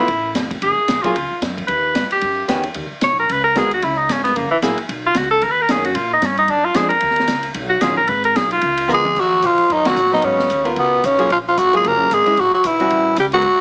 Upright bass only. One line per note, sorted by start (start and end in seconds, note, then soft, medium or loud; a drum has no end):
0.08 0.34 A1 medium
0.35 0.61 F1 loud
0.62 0.76 F#1 medium
0.77 muted upright bass stroke soft
0.88 1.03 A#1 medium
1.04 muted upright bass stroke soft
1.15 1.30 C#2 medium
1.31 muted upright bass stroke soft
1.42 1.68 F#2 loud
1.68 1.94 D#2 medium
1.95 2.10 G2 medium
2.11 muted upright bass stroke soft
2.22 2.48 F#2 medium
2.48 2.74 E2 medium
2.75 2.90 D#2 loud
2.91 muted upright bass stroke soft
3.02 3.28 B1 medium
3.29 3.55 C#2 medium
3.56 3.82 D#2 medium
3.83 4.08 C#2 loud
4.09 4.35 G#1 medium
4.36 4.51 F#1 medium
4.51 muted upright bass stroke soft
4.62 4.77 A#1 medium
4.78 muted upright bass stroke soft
4.89 5.15 B1 medium
5.15 5.41 C#2 medium
5.42 5.68 D#2 medium
5.69 5.94 F#2 loud
5.95 6.21 A#2 loud
6.22 6.48 G2 loud
6.48 6.74 F#2 medium
6.75 7.01 F2 loud
7.02 7.28 D#2 loud
7.28 7.54 C#2 medium
7.54 7.81 B1 medium
7.82 8.08 A#1 loud
8.08 8.35 G#1 loud
8.36 8.62 B1 loud
8.62 8.87 C#2 medium
8.88 9.14 D2 loud
9.16 9.42 D#2 medium
9.43 9.57 A#2 medium
9.58 muted upright bass stroke soft
9.69 9.94 F#2 medium
9.95 10.21 A#2 medium
10.23 10.49 G#2 medium
10.50 10.76 D#2 medium
10.77 11.02 C#2 medium
11.04 11.29 B1 medium
11.30 11.56 A#1 medium
11.57 11.83 G#1 medium
11.84 12.09 F#1 medium
12.11 12.25 G#1 medium
12.27 muted upright bass stroke soft
12.37 12.51 A#1 medium
12.54 muted upright bass stroke soft
12.64 12.90 B1 medium
12.91 13.16 A1 medium
13.18 13.43 C#2 medium
13.43 13.61 G#2 medium